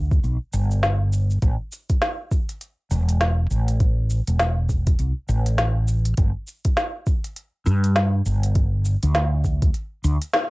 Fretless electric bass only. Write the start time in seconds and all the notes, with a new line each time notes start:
Already playing: D2
0.24 B1
0.53 G1
1.43 A1
2.91 E1
3.50 A1
4.28 E1
4.99 C2
5.29 A1
6.18 G1
7.66 G2
8.26 G1
9.03 D2
10.04 D2